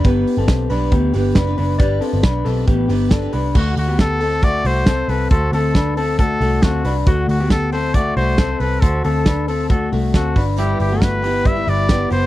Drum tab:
CC |--------|--------|x-------|--------|
HH |xoxoxoxo|xoxoxoxo|-oxoxoxo|xoxoxoxo|
SD |--o---o-|--o---o-|--o---o-|--o---o-|
BD |o-o-o-o-|o-o-o-o-|o-o-o-o-|o-o-o-o-|

CC |--------|--------|--------|
HH |xoxoxoxo|xoxoxoxo|xoxoxoxo|
SD |--o---o-|--o---o-|--o---o-|
BD |o-o-o-o-|o-o-o-oo|--o-o-o-|